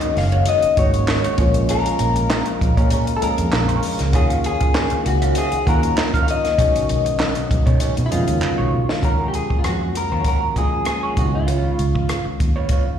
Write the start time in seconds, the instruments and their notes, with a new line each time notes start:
Already playing: tine electric piano D#3 G#3 A#3 C#4 F#4, french horn section D#3 F#3 G#3 C#4 F#4, clean electric guitar D#5
0.01 muted clean electric guitar stroke, muted fingered electric bass stroke, closed hi-hat
0.16 fingered electric bass F#1, clean electric guitar F5, snare, open hi-hat
0.32 clean electric guitar D#4 F#4 C#5, closed hi-hat
0.46 clean electric guitar D#4 F#4 C#5 D#5, closed hi-hat
0.62 muted clean electric guitar stroke, muted fingered electric bass stroke, closed hi-hat
0.76 fingered electric bass G#1, tine electric piano D#3 G#3 A#3 C#4 F#4, clean electric guitar D#4 F#4 C#5 D#5, kick, closed hi-hat
0.94 muted clean electric guitar stroke, closed hi-hat
1.08 muted clean electric guitar stroke, snare, clap
1.24 clean electric guitar D#4 F#4 C#5, closed hi-hat
1.38 fingered electric bass A#1, french horn section C#3 F3 A#3 F5, tine electric piano F3 G#3 A#3 C#4 F4, muted clean electric guitar stroke, kick, closed hi-hat
1.54 muted clean electric guitar stroke, closed hi-hat
1.69 clean electric guitar F4 G#4 A#4 C#5, closed hi-hat
1.86 closed hi-hat
1.99 fingered electric bass A#1, closed hi-hat
2.16 muted clean electric guitar stroke, closed hi-hat
2.30 muted clean electric guitar stroke, snare, clap
2.46 muted clean electric guitar stroke, closed hi-hat
2.61 fingered electric bass A#1, kick, closed hi-hat
2.77 fingered electric bass A#2, clean electric guitar F4 G#4 C#5, kick, closed hi-hat
2.90 clean electric guitar F4 G#4 C#5, closed hi-hat
3.07 muted clean electric guitar stroke, closed hi-hat
3.17 clean electric guitar A4
3.21 tine electric piano F3 G#3 A#3 C#4 G#4, clean electric guitar F4 G#4 A#4 D#5, muted fingered electric bass stroke, closed hi-hat
3.38 fingered electric bass F2, muted clean electric guitar stroke, closed hi-hat
3.52 fingered electric bass A#1, muted clean electric guitar stroke, snare, clap
3.68 clean electric guitar F4 G#4 C#5, closed hi-hat
3.83 muted clean electric guitar stroke, open hi-hat
3.99 fingered electric bass C#2, muted clean electric guitar stroke, snare, closed hi-hat
4.13 fingered electric bass D#2, tine electric piano D#3 F#3 A#3 C#4 F4, french horn section D#3 F#3 C#4, clean electric guitar F#4 G#4 C#5 F5, kick, closed hi-hat
4.30 closed hi-hat
4.44 clean electric guitar G#4, closed hi-hat
4.60 muted clean electric guitar stroke, muted fingered electric bass stroke, kick, closed hi-hat
4.74 muted clean electric guitar stroke, snare, clap
4.90 muted clean electric guitar stroke, muted fingered electric bass stroke, closed hi-hat
5.06 fingered electric bass C#2, clean electric guitar F#4, closed hi-hat
5.22 clean electric guitar F#4 C#5 F5, closed hi-hat
5.35 clean electric guitar F#4 G#4 C#5 F5, closed hi-hat
5.52 muted clean electric guitar stroke, muted fingered electric bass stroke, closed hi-hat
5.66 fingered electric bass D#2, tine electric piano D#3 F#3 A#3 C#4 F4, clean electric guitar F#4 A#4 C#5 F#5, kick, closed hi-hat
5.83 muted clean electric guitar stroke, closed hi-hat
5.97 muted clean electric guitar stroke, snare, clap
6.14 clean electric guitar F#4 C#5 F5, kick, closed hi-hat
6.23 clean electric guitar F5
6.28 clean electric guitar D#5, muted clean electric guitar stroke, closed hi-hat
6.44 muted clean electric guitar stroke, snare, closed hi-hat
6.58 fingered electric bass B1, tine electric piano D#3 G#3 B3 C#4 F#4, french horn section F#3 G#3 B3, clean electric guitar D#4 G#4 C#5, kick, closed hi-hat
6.76 closed hi-hat
6.89 fingered electric bass B1, closed hi-hat
7.05 muted clean electric guitar stroke, closed hi-hat
7.20 muted clean electric guitar stroke, snare, clap
7.35 muted clean electric guitar stroke, closed hi-hat
7.51 fingered electric bass B1, kick, closed hi-hat
7.66 fingered electric bass B2, clean electric guitar D#4 G#4 C#5, kick, closed hi-hat
7.80 clean electric guitar D#4 G#4 C#5, closed hi-hat
7.97 fingered electric bass B2, muted clean electric guitar stroke, closed hi-hat
8.06 clean electric guitar E4
8.11 fingered electric bass F2, tine electric piano C#3 F#3 G#3 B3 C#4, clean electric guitar D#4 F4 G#4 D#5, closed hi-hat
8.17 tine electric piano D#3
8.28 fingered electric bass D#2, muted clean electric guitar stroke, closed hi-hat
8.42 muted clean electric guitar stroke, muted fingered electric bass stroke, clap
8.58 fingered electric bass B1, clean electric guitar D#4 G#4 C#5
8.72 fingered electric bass B2, muted clean electric guitar stroke
8.89 muted clean electric guitar stroke, snare
9.02 fingered electric bass D#2, tine electric piano F#3 G#3 A#3 C#4 F4, clean electric guitar F#4 G#4 A#4 C#5, kick, closed hi-hat
9.28 clean electric guitar G4
9.34 clean electric guitar G#4, closed hi-hat
9.50 muted clean electric guitar stroke, kick
9.59 clean electric guitar F4
9.64 fingered electric bass F2, clean electric guitar F#4, muted clean electric guitar stroke, cross-stick, closed hi-hat
9.81 muted clean electric guitar stroke
9.95 clean electric guitar A#4, cross-stick, closed hi-hat
10.12 fingered electric bass D#2, clean electric guitar F#4 G#4 C#5
10.25 clean electric guitar F#4 G#4 A#4 C#5, kick, closed hi-hat
10.42 muted clean electric guitar stroke
10.55 tine electric piano F3 G#3 A#3 C#4 F4, clean electric guitar F#4 G#4 D#5, kick, closed hi-hat
10.62 tine electric piano F#3
10.73 muted clean electric guitar stroke
10.85 clean electric guitar G#4, muted clean electric guitar stroke, cross-stick, closed hi-hat
11.03 clean electric guitar F#4 G#4 C#5
11.16 fingered electric bass C#2, tine electric piano D#3 G#3 B3 C#4 E4, clean electric guitar F#4, muted clean electric guitar stroke, kick, closed hi-hat
11.25 tine electric piano F4
11.34 clean electric guitar F4, muted clean electric guitar stroke
11.47 clean electric guitar F4 B4 C#5, closed hi-hat
11.79 fingered electric bass C#2, closed hi-hat
11.95 muted clean electric guitar stroke, kick
12.09 muted clean electric guitar stroke, cross-stick, closed hi-hat
12.25 muted clean electric guitar stroke, muted fingered electric bass stroke
12.40 fingered electric bass D#2, kick, closed hi-hat
12.56 clean electric guitar F4 B4 C#5
12.69 clean electric guitar F4 B4 C#5, kick, closed hi-hat
12.87 muted clean electric guitar stroke, muted fingered electric bass stroke